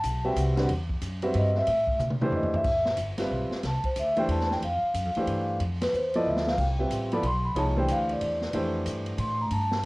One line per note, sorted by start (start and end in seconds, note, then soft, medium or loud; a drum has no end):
0.00 0.35 B1 medium
0.00 0.23 A5 loud
0.00 hi-hat pedal medium
0.00 ride medium
0.24 0.55 G3 medium
0.24 0.55 C4 medium
0.24 0.55 F#4 medium
0.24 0.55 B4 medium
0.24 0.56 E5 medium
0.24 0.37 G5 medium
0.36 0.68 C2 medium
0.36 0.69 F#5 medium
0.36 hi-hat pedal medium
0.36 ride medium
0.56 0.67 D3 medium
0.56 0.68 G3 medium
0.56 0.68 C4 medium
0.56 0.68 F#4 medium
0.56 0.68 B4 medium
0.56 snare soft
0.56 ride soft
0.68 1.00 E2 medium
0.68 ride medium
0.89 kick soft
1.01 1.33 F#2 medium
1.01 hi-hat pedal soft
1.01 ride medium
1.22 1.65 G3 medium
1.22 1.65 C4 medium
1.22 1.65 F#4 medium
1.22 1.65 B4 medium
1.22 1.65 E5 medium
1.22 ride soft
1.34 1.66 G2 loud
1.34 1.56 D#5 medium
1.34 ride medium
1.54 1.98 E5 loud
1.54 snare soft
1.67 1.99 A2 medium
1.67 ride medium
1.87 kick medium
1.99 2.30 B2 medium
1.99 hi-hat pedal soft
1.99 mid tom soft
2.10 mid tom medium
2.21 2.64 E3 medium
2.21 2.64 A3 medium
2.21 2.64 D4 medium
2.21 2.64 G4 medium
2.21 2.64 C5 medium
2.21 mid tom medium
2.31 2.63 E2 medium
2.31 floor tom medium
2.36 2.54 D#5 medium
2.43 floor tom medium
2.54 2.96 E5 medium
2.54 floor tom medium
2.64 2.97 A1 medium
2.64 kick medium
2.64 crash medium
2.85 snare soft
2.97 3.30 G1 medium
2.97 hi-hat pedal medium
2.97 ride medium
3.18 3.61 G3 medium
3.18 3.61 C4 medium
3.18 3.62 F4 medium
3.18 3.62 B4 medium
3.18 3.62 E5 medium
3.18 snare soft
3.18 ride medium
3.31 3.50 B1 medium
3.51 muted upright bass stroke soft
3.51 snare soft
3.63 3.83 C2 medium
3.63 3.85 A5 medium
3.63 snare soft
3.63 ride medium
3.84 3.97 C5 medium
3.84 muted upright bass stroke soft
3.84 kick medium
3.84 ride soft
3.96 4.27 D2 medium
3.96 4.18 E5 medium
3.96 hi-hat pedal soft
3.96 ride medium
4.17 4.59 E3 medium
4.17 4.60 A3 medium
4.17 4.60 D4 medium
4.17 4.60 G4 medium
4.17 4.60 C5 medium
4.17 4.30 G5 medium
4.17 ride soft
4.28 4.61 E2 medium
4.28 4.51 A5 medium
4.28 ride medium
4.40 snare soft
4.51 4.63 G5 medium
4.51 snare soft
4.62 4.81 F2 medium
4.62 5.58 F5 medium
4.62 ride medium
4.82 muted upright bass stroke soft
4.94 5.05 F#2 medium
4.94 hi-hat pedal medium
4.94 ride medium
5.05 5.15 F2 medium
5.15 5.26 E2 medium
5.15 5.59 E3 medium
5.15 5.59 A3 medium
5.15 5.59 D4 medium
5.15 5.59 G4 medium
5.15 5.59 C5 medium
5.15 ride soft
5.27 5.59 G2 medium
5.27 ride medium
5.60 5.92 F2 medium
5.60 ride medium
5.81 5.93 B4 medium
5.81 snare soft
5.81 ride medium
5.93 6.25 E2 medium
5.93 6.14 C5 medium
5.93 hi-hat pedal medium
6.14 6.57 F3 medium
6.14 6.57 B3 medium
6.14 6.57 E4 medium
6.14 6.57 A4 medium
6.14 6.57 D5 medium
6.14 6.27 D#5 medium
6.14 ride soft
6.26 6.57 D2 medium
6.26 6.47 E5 medium
6.37 snare medium
6.47 6.59 F5 medium
6.47 snare medium
6.58 6.90 C2 medium
6.58 7.09 G5 medium
6.58 kick medium
6.58 crash medium
6.79 7.10 G3 soft
6.79 7.10 C4 soft
6.79 7.10 F4 soft
6.79 7.10 B4 soft
6.79 7.10 E5 medium
6.90 7.22 A1 medium
6.90 hi-hat pedal medium
6.90 ride medium
7.12 7.23 F3 medium
7.12 7.23 B3 medium
7.12 7.23 E4 medium
7.12 7.24 A4 medium
7.12 7.24 D5 medium
7.12 7.24 B5 loud
7.12 ride soft
7.23 7.54 B1 medium
7.23 7.45 C6 medium
7.23 ride medium
7.45 7.57 B5 loud
7.55 7.87 C2 medium
7.55 7.75 F3 medium
7.55 7.75 A#3 medium
7.55 7.75 D#4 medium
7.55 7.75 G#4 medium
7.55 7.75 C#5 medium
7.55 7.77 A5 medium
7.55 ride medium
7.76 8.47 E3 medium
7.76 8.47 A3 medium
7.76 8.47 D4 medium
7.76 8.47 G4 medium
7.76 8.47 C5 medium
7.76 7.90 G5 medium
7.88 8.20 D2 medium
7.88 8.10 F5 medium
7.88 hi-hat pedal medium
7.88 ride medium
8.09 8.53 D5 medium
8.09 ride soft
8.21 8.53 E2 medium
8.21 ride medium
8.41 snare soft
8.53 8.85 F2 medium
8.53 9.44 E3 medium
8.53 9.45 A3 medium
8.53 9.45 D4 medium
8.53 9.45 G4 medium
8.53 9.45 C5 medium
8.53 ride medium
8.86 9.17 G2 medium
8.86 hi-hat pedal medium
8.86 ride medium
9.06 ride soft
9.18 9.50 A2 medium
9.18 9.40 C6 medium
9.18 ride medium
9.41 9.52 A#5 medium
9.51 9.83 G2 medium
9.51 9.85 A5 medium
9.51 ride medium
9.71 snare medium